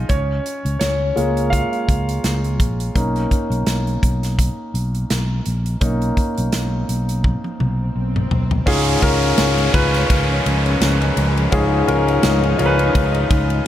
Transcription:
Already playing: grand piano D#4 F4 D#5 F5
0.09 fingered electric bass C#2, grand piano C#4 C#5, kick, closed hi-hat
0.46 closed hi-hat
0.65 fingered electric bass C#2, closed hi-hat
0.79 fingered electric bass C#2, grand piano C#4 C#5, snare, closed hi-hat
1.16 fingered electric bass C#2, grand piano G#3 A#3 F4, closed hi-hat
1.37 closed hi-hat
1.50 grand piano F4 F5, kick, closed hi-hat
1.73 closed hi-hat
1.88 fingered electric bass C#2, kick, closed hi-hat
2.09 closed hi-hat
2.24 fingered electric bass C#2, snare, closed hi-hat
2.44 closed hi-hat
2.59 fingered electric bass A#1, kick, closed hi-hat
2.80 closed hi-hat
2.95 fingered electric bass B1, grand piano A#3 C#4 D#4, kick, closed hi-hat
3.16 closed hi-hat
3.31 kick, closed hi-hat
3.50 fingered electric bass B1, closed hi-hat
3.67 fingered electric bass B1, snare, closed hi-hat
3.87 closed hi-hat
4.02 fingered electric bass B1, kick, closed hi-hat
4.23 snare, closed hi-hat
4.39 kick, closed hi-hat
4.74 fingered electric bass B1, closed hi-hat
4.95 closed hi-hat
5.10 fingered electric bass B1, snare, closed hi-hat
5.46 fingered electric bass A#1, closed hi-hat
5.66 closed hi-hat
5.81 fingered electric bass B1, grand piano A#3 C#4 D#4, kick, closed hi-hat, swell
6.02 closed hi-hat
6.17 kick, closed hi-hat
6.38 fingered electric bass B1, closed hi-hat
6.52 fingered electric bass B1, snare, closed hi-hat
6.89 fingered electric bass B1, closed hi-hat
7.09 closed hi-hat
7.24 kick, high tom
7.44 high tom
7.60 fingered electric bass B1, mid tom
7.96 fingered electric bass B1
8.16 mid tom
8.31 fingered electric bass B1, floor tom
8.51 floor tom
8.66 fingered electric bass C#2, grand piano G#2 C#4 F4 G#4, string section F3 G#3 C#4, kick, crash, downlifter
9.02 fingered electric bass C#2, grand piano C#4 F4 A#4, kick, ride
9.23 ride
9.38 fingered electric bass C#2, snare, ride
9.58 ride
9.73 fingered electric bass C#2, grand piano C#4 F4 B4, kick, ride
9.94 snare, ride
10.10 fingered electric bass C#2, kick, ride
10.46 fingered electric bass C#2, ride
10.66 ride
10.81 fingered electric bass C#2, snare, ride
11.02 ride
11.17 fingered electric bass C#2, ride
11.37 ride
11.52 fingered electric bass C#2, grand piano G#2 C#4 F4 G#4, string section D#4, kick, ride
11.87 fingered electric bass C#2, grand piano C#4 F4 A#4, ride
12.08 ride
12.23 fingered electric bass C#2, snare, ride
12.43 ride
12.58 fingered electric bass C#2, grand piano C#4 F4 A#4, ride
12.66 grand piano B4
12.79 ride
12.95 fingered electric bass C#2, kick, ride
13.15 ride
13.30 fingered electric bass C#2, kick, ride
13.50 ride

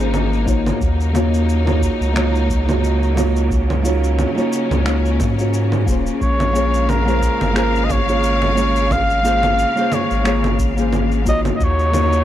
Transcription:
Already playing: analog synth bass G#1, string section C#3 G#3 A#3 D#4, nylon-string guitar A#3 C#4
0.00 nylon-string guitar F4 G#4 C5
0.14 low conga, cabasa
0.33 cabasa
0.45 nylon-string guitar A#3 D#4 F4 F#4 C#5, kick, cabasa
0.66 low conga, cabasa
0.80 analog synth bass D#2, string section C#3 F#3 D#4, kick, cabasa
1.00 cabasa
1.13 nylon-string guitar A#3 D#4 F4 F#4 C#5, low conga, cabasa
1.34 cabasa
1.49 cabasa
1.65 nylon-string guitar A#3 D#4 F4 F#4 C#5, low conga, cabasa
1.82 kick, cabasa
2.01 analog synth bass C#2, cabasa
2.13 nylon-string guitar A#3 D#4 F4 F#4 C#5, finger snap, low conga, cabasa
2.35 cabasa
2.49 kick, cabasa
2.65 nylon-string guitar A#3 D#4 F4 F#4 C#5, low conga, cabasa
2.84 cabasa
3.03 cabasa
3.15 nylon-string guitar A#3 D#4 F4 F#4 C#5, low conga, cabasa
3.36 cabasa
3.51 string section C#4, kick, cabasa
3.70 low conga, cabasa
3.82 nylon-string guitar A#3 D#4 F4 F#4 C#5, cabasa
4.04 cabasa
4.19 low conga, cabasa
4.35 nylon-string guitar A#3 D#4 F4 F#4 C#5, cabasa
4.53 cabasa
4.71 analog synth bass C#2, low conga, cabasa
4.84 nylon-string guitar A#3 D#4 F4 F#4 C#5, finger snap, cabasa
5.06 cabasa
5.20 analog synth bass G#2, kick, low conga, cabasa
5.37 nylon-string guitar A#3 D#4 F4 F#4 C#5, cabasa
5.54 cabasa
5.72 low conga, cabasa
5.86 analog synth bass D#1, nylon-string guitar A#3 C#4 F4 G#4 C5, kick, cabasa
6.06 cabasa
6.21 analog synth bass A#1, string section G#3 F5, flugelhorn C#5, kick, cabasa
6.40 low conga, cabasa
6.53 nylon-string guitar A#3 C#4 F4 G#4 C#5, cabasa
6.74 cabasa
6.89 flugelhorn A#4, low conga, cabasa
7.05 nylon-string guitar A#3 C#4 F4 G#4 C5, cabasa
7.22 kick, cabasa
7.41 analog synth bass G#1, low conga, cabasa
7.53 nylon-string guitar A#3 C#4 F4 G#4 C5, finger snap, cabasa
7.57 flugelhorn A#4
7.75 cabasa
7.85 flugelhorn D#5
7.90 flugelhorn C#5, kick, low conga, cabasa
8.06 nylon-string guitar A#3 C#4 F4 G#4 C#5, cabasa
8.23 cabasa
8.42 low conga, cabasa
8.54 nylon-string guitar A#3 C#4 F4 G#4 C#5, cabasa
8.76 cabasa
8.91 flugelhorn F5, kick, low conga, cabasa
9.10 cabasa
9.23 nylon-string guitar A#3 C#4 F4 G#4 C5, cabasa
9.43 low conga, cabasa
9.59 cabasa
9.75 nylon-string guitar A#3 C#4 F4 G#4 C5, cabasa
9.92 flugelhorn C#5, low conga, cabasa
10.11 analog synth bass G#1, cabasa
10.24 nylon-string guitar A#3 C#4 F4 G#4 C#5, finger snap, cabasa
10.44 low conga, cabasa
10.59 kick, cabasa
10.76 nylon-string guitar A#3 C#4 F4 G#4 C5, cabasa
10.93 low conga, cabasa
11.12 cabasa
11.25 nylon-string guitar A#3 D#4 F4 F#4 C#5, kick, cabasa
11.29 flugelhorn D#5
11.45 low conga, cabasa
11.56 flugelhorn D#5, kick
11.60 analog synth bass D#2, string section F#3 A#3 D#4, flugelhorn C#5, cabasa
11.79 cabasa
11.92 nylon-string guitar A#3 D#4 F4 F#4 C#5, low conga, cabasa
12.13 cabasa

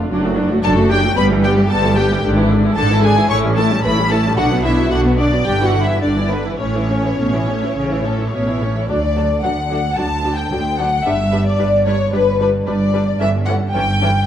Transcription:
0.09 double bass section F#1, cello section F#2, viola section F#3 D4
0.23 viola section A3 F#4
0.36 viola section F#3 D4
0.50 viola section A3 F#4
0.63 double bass section F#1, cello section F#2, viola section F#3 D4, violin section A4 A5
0.76 viola section A3 F#4
0.90 viola section F#3 D4, violin section G4 G5
1.04 viola section A3 F#4
1.16 double bass section G1, cello section G2, viola section G3 B3, violin section B4 B5
1.30 viola section E3 G3
1.43 viola section G3 B3, violin section G4 G5
1.57 viola section E3 G3
1.69 double bass section G1, cello section G2, viola section G3 B3, violin section A4 A5
1.83 viola section E3 G3
1.96 viola section G3 B3, violin section G4 G5
2.10 viola section E3 G3
2.23 double bass section G#1, cello section G#2, viola section D3 D4
2.36 viola section E3 E4
2.50 viola section D3 D4
2.63 viola section E3 E4
2.76 double bass section G#1, cello section G#2, viola section D3 D4, violin section A4 A5
2.90 viola section E3 E4
3.03 viola section D3 D4, violin section G#4 G#5
3.16 viola section E3 E4
3.29 double bass section A1, cello section A2, viola section A3 E4, violin section C#5 C#6
3.43 viola section G3 C#4
3.57 viola section A3 E4, violin section A4 A5
3.70 viola section G3 C#4
3.84 double bass section A1, cello section A2, viola section A3 E4, violin section B4 B5
3.98 viola section G3 C#4
4.11 viola section A3 E4, violin section A4 A5
4.25 viola section G3 C#4
4.37 double bass section B1, cello section B2, viola section D3 D4, violin section F#4 F#5
4.52 viola section F#3 B3
4.64 viola section D3 D4, violin section E4 E5
4.78 viola section F#3 B3
4.91 double bass section B1, cello section B2, viola section D3 D4, violin section F#4 F#5
5.05 viola section F#3 B3
5.17 viola section D3 D4, violin section D4 D5
5.31 viola section F#3 B3
5.45 double bass section G1, cello section G2, viola section D3 D4, violin section G4 G5
5.59 viola section E3 E4
5.64 violin section F#4 F#5
5.73 viola section D3 D4
5.83 violin section E4 E5
5.87 viola section E3 E4
6.01 double bass section G1, cello section G2, viola section D3 D4, violin section D4 D5
6.15 viola section E3 E4
6.29 viola section D3 D4, violin section B3 B4
6.45 viola section E3 E4
6.58 double bass section A1, cello section A2, viola section A3 C#4, violin section C#4 C#5
6.74 viola section E3 E4
6.89 viola section A3 C#4
7.03 viola section E3 E4
7.17 double bass section A1, cello section B2, viola section A3 C#4
7.33 viola section E3 E4
7.47 cello section A2, viola section A3 C#4
7.62 viola section E3 E4
7.75 double bass section A1, cello section C#3, viola section A3 C#4
7.90 viola section E3 E4
8.04 cello section A2, viola section A3 C#4, violin section A4
8.19 viola section E3 E4
8.32 double bass section A1, cello section B2, viola section A3 C#4, violin section C#5
8.47 viola section E3 E4
8.61 cello section A2, viola section A3 C#4
8.75 viola section E3 E4
8.88 double bass section D2, cello section D2, viola section F#3 D4, violin section A4 D5
9.16 viola section F#3 D4, violin section A4
9.43 double bass section D2, cello section D2, viola section F#3 D4, violin section A4 F#5
9.71 viola section F#3 D4, violin section A4
9.97 double bass section D2, cello section D2, viola section F#3 D4, violin section A4 A5
10.24 viola section F#3 D4, violin section A4
10.38 violin section G5
10.51 double bass section D2, cello section D2, viola section F#3 D4, violin section A4
10.77 viola section F#3 D4, violin section A4 F#5
11.05 double bass section G1, cello section G2, viola section G3 D4, violin section B4 E5
11.32 viola section G3 D4, violin section B4
11.46 violin section D5
11.59 double bass section G1, cello section G2, viola section G3 D4, violin section B4
11.86 viola section G3 D4, violin section B4 C#5
12.13 double bass section G1, cello section G2, viola section G3 D4, violin section B4
12.40 viola section G3 D4, violin section B4
12.66 double bass section G1, cello section G2, viola section G3 D4, violin section B4 D5
12.93 viola section G3 D4, violin section B4
13.19 double bass section G1, cello section G2, viola section E3 C#4, violin section A4 E5
13.46 viola section E3 C#4, violin section A4 F#5
13.74 double bass section G1, cello section G2, viola section E3 C#4, violin section A4 G5
14.01 viola section E3 C#4, violin section A4

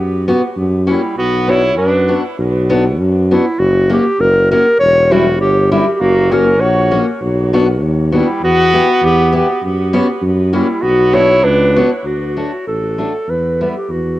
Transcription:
Already playing: tuba F#2
0.28 steel-string acoustic guitar B3 C#4 F#4
0.56 tuba F#2
0.87 steel-string acoustic guitar A#3 C#4 F#4, clarinet E4
0.92 trumpet G3
1.17 tuba B1, trumpet B3, clarinet F#4
1.47 steel-string acoustic guitar B3 D4 F#4, trumpet E4, clarinet C#5
1.77 tuba F#2, trumpet D4, clarinet B4
2.08 steel-string acoustic guitar B3 D4 F#4
2.38 tuba B1
2.70 steel-string acoustic guitar B3 D4 F#4
2.98 tuba F#2
3.31 steel-string acoustic guitar B3 D4 F#4, clarinet E4
3.58 tuba F#1, clarinet F#4
3.90 steel-string acoustic guitar A#3 C#4 F#4, clarinet G4
4.18 tuba F#1, clarinet A#4
4.51 steel-string acoustic guitar A#3 C#4 F#4, clarinet A#4
4.79 tuba E1, clarinet C#5
5.11 steel-string acoustic guitar G3 C#4 E4, clarinet F#4
5.40 tuba G1, clarinet G4
5.72 steel-string acoustic guitar G3 C#4 E4, clarinet G4
5.94 clarinet G4
6.00 tuba F#1, trumpet A#3, clarinet F#4
6.31 steel-string acoustic guitar A#3 C#4 F#4, trumpet C#4, clarinet A#4
6.60 tuba A#1, trumpet F#4, clarinet C#5
6.91 steel-string acoustic guitar A#3 C#4 F#4
7.21 tuba B1
7.53 steel-string acoustic guitar B3 D4 F#4
7.82 tuba D#2
8.12 trumpet G3, steel-string acoustic guitar B3 D4 F#4, clarinet E4
8.41 tuba E2, trumpet B3, clarinet F#4
8.74 steel-string acoustic guitar B3 E4 G4
9.02 tuba E2, trumpet B3, clarinet G4
9.32 steel-string acoustic guitar B3 E4 G4, trumpet B3
9.37 clarinet G4
9.62 tuba F#2
9.93 steel-string acoustic guitar B3 C#4 F#4
10.22 tuba F#2
10.53 trumpet G3, steel-string acoustic guitar A#3 C#4 F#4, clarinet E4
10.82 tuba B1, trumpet B3, clarinet F#4
11.13 steel-string acoustic guitar B3 D4 F#4, trumpet E4, clarinet C#5
11.43 tuba C#2, trumpet D4, clarinet B4
11.76 steel-string acoustic guitar B3 D4 F#4
12.04 tuba D2, clarinet F#4
12.37 steel-string acoustic guitar A3 D4 F#4
12.67 tuba A1, clarinet A4
12.98 steel-string acoustic guitar A3 D4 F#4
13.27 tuba E2, clarinet B4
13.61 steel-string acoustic guitar G3 B3 E4, clarinet B4
13.77 clarinet G4
13.89 tuba E2, clarinet F#4

